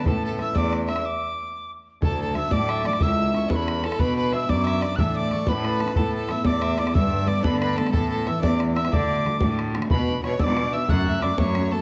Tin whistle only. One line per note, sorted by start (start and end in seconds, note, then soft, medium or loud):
0.08 0.23 A5 medium
0.26 0.32 A5 medium
0.41 0.59 E6 loud
0.57 0.73 D6 medium
0.89 1.07 E6 medium
1.05 1.71 D6 medium
2.05 2.20 A5 medium
2.22 2.36 A5 medium
2.37 2.54 E6 loud
2.53 2.85 D6 loud
2.86 3.04 D6 loud
3.02 3.35 E6 loud
3.36 3.52 C#6 medium
3.52 3.57 C#6 medium
3.56 3.87 B5 medium
3.85 4.01 A5 medium
4.00 4.16 B5 loud
4.17 4.32 B5 medium
4.34 4.51 E6 loud
4.49 4.82 D6 loud
4.83 4.97 D6 medium
4.96 5.18 E6 medium
4.96 5.01 F#6 medium
5.16 5.34 D6 medium
5.33 5.50 C#6 medium
5.48 5.81 B5 medium
5.80 5.95 A5 medium
5.96 6.12 A5 medium
6.14 6.30 A5 medium
6.29 6.48 E6 medium
6.46 6.78 D6 medium
6.79 6.96 D6 medium
6.94 7.29 E6 loud
7.28 7.42 D6 loud
7.43 7.59 B5 medium
7.60 7.78 B5 medium
7.76 7.92 A5 medium
7.93 8.09 A5 loud
8.11 8.26 A5 medium
8.27 8.42 E6 loud
8.43 8.59 D6 loud
8.75 8.94 E6 medium
8.93 9.59 D6 loud
9.90 10.21 B5 loud
10.23 10.38 C#6 medium
10.39 10.44 E6 medium
10.43 10.75 D6 medium
10.73 10.91 E6 medium
10.90 11.23 F#6 loud
11.22 11.39 D6 loud
11.38 11.73 C#6 loud
11.72 11.81 A5 medium